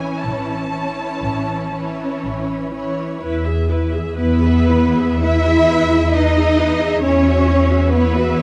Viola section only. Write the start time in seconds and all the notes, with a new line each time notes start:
Already playing: E3 C#4
0.72 E3 C#4
1.75 E3 C#4
2.72 E3 C#4
3.22 E4 B4
3.44 G#4 E5
3.68 E4 B4
3.93 G#4 E5
4.17 E4 B4
4.43 G#4 E5
4.69 E4 B4
4.95 G#4 E5
5.21 E4 B4
5.45 G#4 E5
5.69 E4 B4
5.92 G#4 E5
6.13 E4 B4
6.37 G#4 E5
6.57 E4 B4
6.80 G#4 E5
7.02 E4 C#5
7.27 F#4 E5
7.47 E4 C#5
7.69 F#4 E5
7.91 E4 C#5
8.14 F#4 E5
8.36 E4 C#5